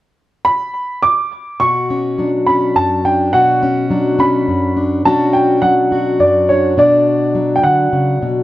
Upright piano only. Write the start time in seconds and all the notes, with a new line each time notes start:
0.45 B5
1.03 D6
1.60 C#6
2.46 B5
2.76 A5
3.05 G5
3.33 F#5
4.20 B5
5.05 A5
5.33 G5
5.62 F#5
6.20 D5
6.49 C#5
6.79 D5
7.56 G5
7.63 F#5